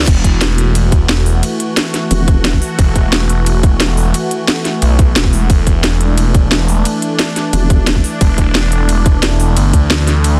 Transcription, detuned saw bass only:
0.07 E1
2.79 E1
4.82 B1
5.16 E1
5.50 E1
8.21 E1
9.57 G1
9.73 D2

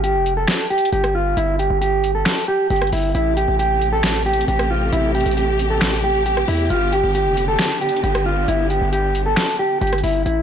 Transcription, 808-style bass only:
Already playing: G1
0.15 F1
0.93 G1
1.37 G1
1.70 G1
2.70 G1
2.93 G1
3.15 A1
3.48 A1
4.48 A1
4.93 A1
5.26 A1
6.48 E2
6.70 G1
7.04 G1
7.26 F1
8.04 G1
8.48 G1
8.82 G1
9.81 G1
10.04 G1
10.26 A1

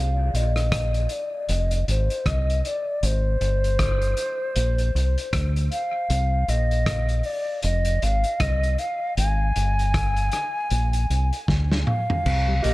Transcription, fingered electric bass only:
Already playing: C2
0.34 A#1
1.49 F1
1.88 G#1
2.26 C2
3.03 G#1
3.40 G1
4.56 A#1
4.95 C2
5.33 D2
6.10 C2
6.48 A#1
7.64 F1
8.02 G#1
8.40 C2
9.17 G#1
9.56 G1
10.71 A#1
11.10 C2
11.49 D2
12.26 C2
12.64 A#1

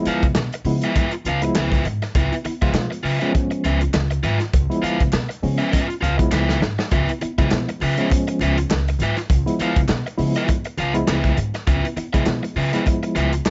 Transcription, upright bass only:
0.06 muted upright bass stroke
0.23 C#3
0.35 B2
0.65 C#3
1.25 C#2
1.55 C#2
1.85 G#2
2.15 C#2
2.45 muted upright bass stroke
2.62 C#3
2.73 B2
3.03 C#3
3.64 C#2
3.94 C#2
4.24 G#2
4.53 C#2
4.83 muted upright bass stroke
5.00 C#3
5.13 B2
5.43 C#3
6.03 C#2
6.32 C#2
6.62 G#2
6.92 C#2
7.23 muted upright bass stroke
7.38 C#3
7.52 B2
7.82 C#3
8.41 C#2
8.71 C#2
9.00 G#2
9.30 C#2
9.60 muted upright bass stroke
9.76 C#3
9.90 B2
10.19 C#3
10.79 C#2
11.09 C#2
11.38 G#2
11.67 C#2
11.97 muted upright bass stroke
12.14 C#3
12.26 B2
12.56 C#3
13.16 C#2
13.47 C#2

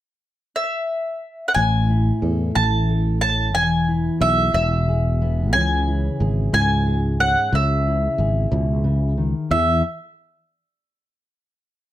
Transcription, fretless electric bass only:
1.56 A1
2.22 E2
2.56 A1
3.54 E1
4.21 B1
4.54 E1
5.53 C#2
6.20 G#1
6.53 C#2
7.53 C#2
8.18 G#1
8.52 C#2
9.51 E2

